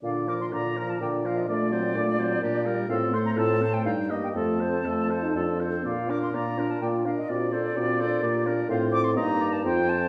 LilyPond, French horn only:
\new Staff \with { instrumentName = "French horn" } { \time 3/4 \key bes \major \tempo 4 = 125 d8 f8 d8 f8 d8 f8 | a8 fis8 a8 fis8 bes8 g8 | c'8 a8 c'8 a8 g8 bes8 | a8 c'8 a8 f'16 ees'16 d'8. c'16 |
bes8 d'8 bes8 d'8 bes8 d'8 | c'8 d'8 c'8 d'8 bes8 d'8 | c'4 bes4 c'4 | }